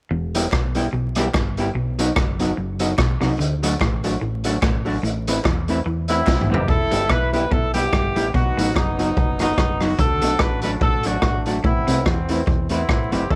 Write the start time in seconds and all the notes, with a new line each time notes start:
0.11 E1 E2
0.35 G3 B3 E4 G4, closed hi-hat
0.52 B1 B2, kick, cross-stick, clap
0.75 G3 B3 E4 G4, closed hi-hat
0.93 B1 B2, muted hollow-body jazz guitar stroke
1.15 G3 B3 E4 G4, cross-stick, closed hi-hat
1.34 G1 G2, muted hollow-body jazz guitar stroke, kick, cross-stick, clap
1.57 G3 B3 E4 G4, closed hi-hat
1.75 B1 B2
1.99 F#3 B3 D#4 F#4, closed hi-hat
2.16 F#1 F#2, kick, cross-stick, clap
2.39 F#3 B3 D#4 F#4, closed hi-hat
2.57 F#1 F#2, muted hollow-body jazz guitar stroke
2.79 F#3 B3 D#4 F#4, closed hi-hat
2.98 B1 B2, muted hollow-body jazz guitar stroke, kick, cross-stick, clap
3.21 C2 C3 F#3 B3 D#4 F#4, cross-stick, open hi-hat
3.39 D2 D3, hi-hat pedal
3.63 F#3 A3 D4 F#4, closed hi-hat
3.80 A1 A2, kick, cross-stick, clap
4.04 F#3 A3 D4 F#4, closed hi-hat
4.21 A1 A2, muted hollow-body jazz guitar stroke
4.44 F#3 A3 D4 F#4, closed hi-hat
4.62 A1 A2, muted hollow-body jazz guitar stroke, kick, cross-stick, clap
4.85 F#3 A3 D4 F#4, open hi-hat
5.03 A1 A2, hi-hat pedal
5.28 A3 C4 E4 B4, closed hi-hat
5.44 E2 E3, kick, cross-stick, clap
5.68 A3 C4 E4 B4, closed hi-hat
5.85 E2 E3, muted hollow-body jazz guitar stroke
6.08 A3 B3 C4 E4 B4, closed hi-hat
6.27 C2 C3, muted hollow-body jazz guitar stroke, kick, snare, clap
6.41 mid tom
6.49 F#1 F#2 A3 C4 E4 G4 B4
6.54 floor tom
6.68 E1 E2 E4 A4, kick
6.91 G1 G2 G3 B3 E4 G4, closed hi-hat
7.09 B1 B2 B4, kick, cross-stick
7.33 G3 B3 E4 G4 B4, closed hi-hat
7.51 B1 B2 E4 A4, kick
7.74 G3 B3 E4 G4, closed hi-hat
7.92 G1 G2, kick, cross-stick
8.16 A1 A2 G3 B3 E4 G4, closed hi-hat
8.34 B1 B2 B3 D#4 F#4, kick
8.56 A1 A2 F#3 B3 D#4 F#4, closed hi-hat
8.75 F#1 F#2 F#3 B3 D#4, kick, cross-stick
8.99 F#3 B3 D#4 F#4, closed hi-hat
9.17 F#1 F#2, kick
9.39 F#3 B3 D#4 F#4, cross-stick, closed hi-hat
9.57 F#1 F#2, kick, cross-stick
9.80 F#3 B3 D#4 F#4, cross-stick, open hi-hat
9.98 D2 D3 D4 F#4 A4, kick, hi-hat pedal
10.21 B1 B2 F#3 A3 D4 F#4, closed hi-hat
10.39 A1 A2 B4, kick, cross-stick
10.62 F#3 A3 D4 F#4 B4, closed hi-hat
10.81 A1 A2 D4 F#4 A4, kick
11.03 F#3 A3 D4 F#4, closed hi-hat
11.07 A3 D4
11.22 A1 A2, muted hollow-body jazz guitar stroke, kick, cross-stick
11.46 F#3 A3 D4 F#4, closed hi-hat
11.64 A1 A2 B3 C4 E4, kick
11.87 C2 C3 A3 C4 E4 B4, closed hi-hat
12.06 E2 E3 C4, kick, cross-stick
12.29 A3 C4 E4 B4, closed hi-hat
12.47 E2 E3, kick
12.69 A3 B3 C4 E4 B4, closed hi-hat
12.89 A1 A2, kick, cross-stick
13.12 F#1 F#2 A3 C4 E4 G4 B4, closed hi-hat
13.30 E1 E2 E4 A4, kick